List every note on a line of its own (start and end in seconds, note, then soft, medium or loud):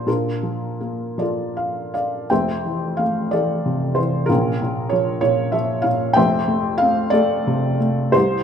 0.06 2.26 A#2 medium
0.06 1.91 D4 soft
0.06 1.20 F4 soft
0.06 1.91 A#4 medium
0.43 1.16 F3 soft
0.81 2.26 A#3 soft
1.18 2.26 F3 soft
1.18 2.27 A4 soft
1.18 1.93 D5 medium
1.22 2.27 F4 soft
1.57 1.92 F5 medium
1.94 2.28 D5 medium
1.94 2.31 F5 medium
2.30 4.26 F1 medium
2.30 4.26 F2 medium
2.30 3.29 C5 medium
2.30 3.29 E5 medium
2.30 3.00 G5 medium
2.65 3.31 E3 soft
2.97 4.26 A3 soft
2.97 3.32 F5 medium
3.31 3.96 E3 soft
3.31 4.26 A4 medium
3.31 3.99 D5 medium
3.66 4.28 C3 soft
3.95 4.29 E3 medium
3.95 4.29 C5 medium
4.26 6.13 A#1 medium
4.26 4.60 A#2 medium
4.26 5.19 C#4 medium
4.26 5.19 F4 medium
4.26 4.92 A#4 medium
4.62 5.21 A#2 medium
4.89 5.52 F3 medium
4.89 5.19 C#5 medium
5.21 5.82 A#2 medium
5.21 5.54 C#5 medium
5.52 6.15 F3 medium
5.52 5.85 E5 medium
5.82 6.16 A#2 medium
5.82 6.17 F5 medium
6.13 8.10 F1 medium
6.13 8.10 F2 medium
6.13 7.10 C5 medium
6.13 7.10 E5 medium
6.13 6.82 G5 loud
6.48 7.11 A3 medium
6.78 8.11 C4 medium
6.78 7.13 F5 loud
7.10 7.78 A3 medium
7.10 8.11 A4 medium
7.10 8.16 D5 loud
7.47 8.13 C3 medium
7.80 8.14 A3 medium
8.12 8.43 C2 medium
8.12 8.43 E4 medium
8.12 8.43 G4 medium
8.12 8.43 C5 medium